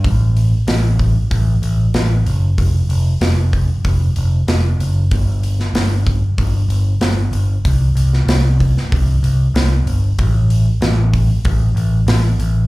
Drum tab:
HH |o-o-o-o-o-o-o-o-|o-o-o-o-o-o-o-o-|o-o-o-o-o-o-o-o-|o-o-o-o-o-o-o-o-|
SD |----o-------o---|----o-------o---|---oo-------o---|---oo--o----o---|
BD |o-----o-o-------|o-----o-o-------|o-----o-o-------|o-----o-o-------|

HH |o-o-o-o-o-o-o-o-|
SD |----o-------o---|
BD |o-----o-o-------|